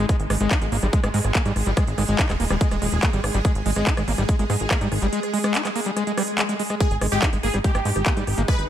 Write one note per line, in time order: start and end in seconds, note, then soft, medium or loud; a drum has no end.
0.00 6.79 G#3 medium
0.00 0.11 D#4 medium
0.09 0.16 G#3 medium
0.09 6.83 G#4 medium
0.09 kick loud
0.09 cross-stick soft
0.09 closed hi-hat medium
0.20 0.26 G#1 medium
0.20 closed hi-hat medium
0.30 0.37 G#1 loud
0.30 0.35 G#3 loud
0.30 cross-stick medium
0.30 open hi-hat loud
0.41 0.47 G#1 medium
0.41 0.53 G#3 loud
0.41 closed hi-hat medium
0.51 0.58 D#4 medium
0.51 kick loud
0.51 cross-stick soft
0.51 clap loud
0.51 closed hi-hat medium
0.62 0.68 G#1 medium
0.62 0.66 G#3 medium
0.62 closed hi-hat medium
0.72 0.79 G#1 loud
0.72 0.77 A#3 medium
0.72 open hi-hat medium
0.83 0.89 G#1 loud
0.83 0.87 G3 medium
0.83 cross-stick soft
0.83 closed hi-hat medium
0.93 1.00 G#3 medium
0.93 kick loud
0.93 closed hi-hat medium
1.04 1.10 G#1 loud
1.04 1.08 G#3 loud
1.04 cross-stick medium
1.04 closed hi-hat medium
1.14 1.21 G#2 loud
1.14 1.19 G#3 medium
1.14 open hi-hat loud
1.24 1.31 G#1 medium
1.24 cross-stick soft
1.24 closed hi-hat medium
1.35 1.42 A#3 medium
1.35 kick loud
1.35 clap loud
1.35 closed hi-hat medium
1.45 1.52 G#2 medium
1.45 1.53 G3 loud
1.45 closed hi-hat medium
1.56 1.63 G#1 loud
1.56 cross-stick soft
1.56 open hi-hat medium
1.66 1.73 G#1 medium
1.66 1.71 G3 medium
1.66 closed hi-hat medium
1.77 1.84 G#3 medium
1.77 kick loud
1.77 cross-stick medium
1.77 closed hi-hat medium
1.87 1.94 G#1 medium
1.87 closed hi-hat medium
1.98 2.05 G#1 loud
1.98 2.03 G#3 loud
1.98 cross-stick soft
1.98 open hi-hat loud
2.08 2.15 G#1 medium
2.08 2.20 G#3 loud
2.08 closed hi-hat medium
2.19 2.26 D#4 medium
2.19 kick loud
2.19 clap loud
2.19 closed hi-hat medium
2.29 2.36 D#1 medium
2.29 2.34 G#3 medium
2.29 cross-stick soft
2.29 clap soft
2.29 closed hi-hat medium
2.40 2.47 D#1 loud
2.40 2.45 A#3 medium
2.40 open hi-hat medium
2.50 2.57 D#1 loud
2.50 2.55 G3 medium
2.50 cross-stick medium
2.50 closed hi-hat medium
2.61 2.68 G#3 medium
2.61 kick loud
2.61 closed hi-hat medium
2.71 2.78 D#1 medium
2.71 2.76 G#3 loud
2.71 cross-stick soft
2.71 closed hi-hat medium
2.82 2.89 D#1 loud
2.82 2.87 G#3 medium
2.82 open hi-hat loud
2.92 2.99 D#1 medium
2.92 closed hi-hat medium
3.03 3.10 A#3 medium
3.03 kick loud
3.03 cross-stick soft
3.03 clap loud
3.03 closed hi-hat medium
3.13 3.20 G#1 medium
3.13 3.20 G3 loud
3.13 closed hi-hat medium
3.24 3.31 G#1 loud
3.24 cross-stick medium
3.24 open hi-hat medium
3.34 3.41 G#1 medium
3.34 3.39 G3 medium
3.34 closed hi-hat medium
3.45 3.52 G#3 medium
3.45 kick loud
3.45 cross-stick soft
3.45 closed hi-hat loud
3.55 3.62 G#1 medium
3.55 closed hi-hat medium
3.66 3.72 G#1 loud
3.66 3.71 G#3 loud
3.66 open hi-hat loud
3.76 3.83 G#1 medium
3.76 3.88 G#3 loud
3.76 cross-stick soft
3.76 closed hi-hat medium
3.87 3.94 D#4 medium
3.87 kick loud
3.87 clap loud
3.87 closed hi-hat medium
3.97 4.04 G#1 medium
3.97 4.02 G#3 medium
3.97 cross-stick medium
3.97 closed hi-hat medium
4.08 4.14 G#1 loud
4.08 4.12 A#3 medium
4.08 open hi-hat medium
4.18 4.25 G#1 loud
4.18 4.23 G3 medium
4.18 cross-stick soft
4.18 closed hi-hat medium
4.29 4.36 G#3 medium
4.29 kick loud
4.29 closed hi-hat loud
4.39 4.46 G#1 medium
4.39 4.44 G#3 loud
4.39 closed hi-hat medium
4.50 4.56 G#2 loud
4.50 4.54 G#3 medium
4.50 cross-stick soft
4.50 open hi-hat loud
4.60 4.67 G#1 medium
4.60 closed hi-hat medium
4.71 4.78 A#3 medium
4.71 kick loud
4.71 cross-stick medium
4.71 clap loud
4.71 closed hi-hat medium
4.81 4.88 G#2 medium
4.81 4.88 G3 loud
4.81 closed hi-hat medium
4.92 4.98 G#1 loud
4.92 cross-stick soft
4.92 open hi-hat medium
5.02 5.09 G#1 medium
5.02 5.07 G3 medium
5.02 closed hi-hat medium
5.13 5.20 G#3 medium
5.13 closed hi-hat loud
5.23 cross-stick soft
5.23 closed hi-hat medium
5.34 5.38 G#3 loud
5.34 open hi-hat loud
5.44 5.56 G#3 loud
5.44 cross-stick medium
5.44 closed hi-hat medium
5.55 5.62 D#4 medium
5.55 clap loud
5.55 closed hi-hat loud
5.65 5.70 G#3 medium
5.65 cross-stick soft
5.65 clap soft
5.65 closed hi-hat medium
5.76 5.80 A#3 medium
5.76 open hi-hat medium
5.86 5.91 G3 medium
5.86 closed hi-hat medium
5.97 6.04 G#3 medium
5.97 cross-stick soft
5.97 closed hi-hat loud
5.97 swell medium
6.07 6.12 G#3 loud
6.07 closed hi-hat medium
6.17 6.22 G3 loud
6.17 cross-stick medium
6.17 open hi-hat loud
6.28 closed hi-hat medium
6.38 6.43 G#3 medium
6.38 cross-stick soft
6.38 clap loud
6.38 closed hi-hat loud
6.49 6.54 G#3 medium
6.49 closed hi-hat medium
6.59 6.62 G#3 medium
6.59 open hi-hat medium
6.70 6.75 G#3 loud
6.70 cross-stick soft
6.70 closed hi-hat medium
6.80 6.88 G#3 medium
6.80 8.69 G#3 medium
6.80 8.69 D#4 medium
6.80 6.96 G#4 loud
6.80 kick loud
6.80 cross-stick soft
6.80 closed hi-hat loud
6.91 6.98 G#1 medium
6.91 closed hi-hat medium
7.01 7.08 G#1 loud
7.01 7.06 G#3 loud
7.01 cross-stick medium
7.01 open hi-hat loud
7.12 7.19 G#1 medium
7.12 7.24 G#3 loud
7.12 7.27 G4 loud
7.12 closed hi-hat medium
7.22 7.30 D#4 medium
7.22 kick loud
7.22 cross-stick soft
7.22 clap loud
7.22 closed hi-hat medium
7.33 7.40 G#1 medium
7.33 7.38 G#3 medium
7.33 closed hi-hat medium
7.43 7.50 G#1 loud
7.43 7.48 A#3 medium
7.43 7.54 G#4 medium
7.43 open hi-hat medium
7.54 7.61 G#1 medium
7.54 7.59 G3 medium
7.54 cross-stick soft
7.54 closed hi-hat medium
7.64 7.72 G#3 medium
7.64 8.40 G4 loud
7.64 kick loud
7.64 closed hi-hat loud
7.75 7.82 G#1 medium
7.75 7.80 G#3 loud
7.75 cross-stick medium
7.75 closed hi-hat medium
7.85 7.92 G#2 loud
7.85 7.90 G#3 medium
7.85 open hi-hat loud
7.96 8.03 G#1 medium
7.96 cross-stick soft
7.96 closed hi-hat medium
8.06 8.13 A#3 medium
8.06 kick loud
8.06 clap loud
8.06 closed hi-hat loud
8.17 8.23 G#2 medium
8.17 8.24 G3 loud
8.17 closed hi-hat medium
8.27 8.34 G#1 loud
8.27 cross-stick soft
8.27 open hi-hat medium
8.38 8.44 G#1 medium
8.38 8.43 A#3 medium
8.38 closed hi-hat medium
8.48 8.55 G#3 medium
8.48 8.64 B4 loud
8.48 kick loud
8.48 cross-stick medium
8.48 closed hi-hat medium
8.59 8.65 G#1 medium
8.59 closed hi-hat medium